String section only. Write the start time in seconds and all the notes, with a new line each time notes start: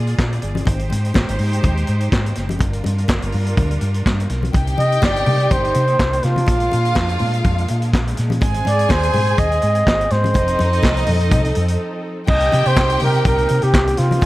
Already playing: A#3 F4 G#4 D5
0.67 G#3 D#4 G4 C5
2.61 G3 D4 F4 A#4
4.55 C3 A#3 D4 D#4
6.48 G#3
8.41 C4 G#4
10.35 F3 D#4 A4
12.28 C3 A#3 C4 D#4
14.22 G#3